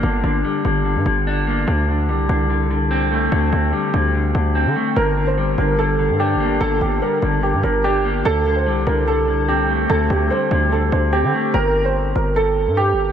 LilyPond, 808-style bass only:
\new Staff \with { instrumentName = "808-style bass" } { \clef bass \time 4/4 \key g \minor \tempo 4 = 146 g,,8 g,,8 r8 g,,8. g,16 g,,4. | d,4 c,8 c,2~ c,8 | d,8 d,8 r8 d,4 d,8. d16 r8 | g,,4. g,,4~ g,,16 g,8~ g,32 g,,8~ g,,32 |
g,,8 g,,8 r8 g,,8. g,16 g,,4. | d,4 c,8 c,2~ c,8 | d,8 d,8 r8 d,4 d,8. d16 r8 | g,,4. g,,4~ g,,16 g,8~ g,32 g,,8~ g,,32 | }